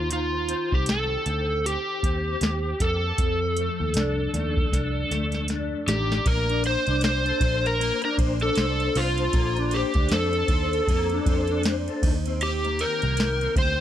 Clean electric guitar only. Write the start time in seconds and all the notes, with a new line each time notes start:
Already playing: C5
0.10 D#3
0.49 C4
0.87 G4
1.26 C4
1.65 G4
2.04 C4
2.42 G4
2.81 A#3
3.19 F2
3.57 A3
3.96 D4
4.35 A3
4.73 D4
5.11 A3
5.49 D4
5.88 D#3
6.26 A#3
6.49 D4
6.65 C5
6.88 D4
7.03 C5
7.26 A4
7.41 C5
7.80 A#3
8.03 D4
8.18 C5
8.41 D4
8.57 C5
8.80 A4
8.96 C5
9.19 A4
9.34 A#3
9.57 D4
9.73 C5
9.96 D4
10.11 C5
10.34 A4
10.50 C5
10.74 A4
10.89 A#3
11.12 D4
11.27 C5
11.50 D4
11.65 C5
11.88 A4
12.03 D#3
12.27 C4
12.65 A#3
12.80 G4
13.03 A#3
13.19 G4
13.41 C4
13.58 G4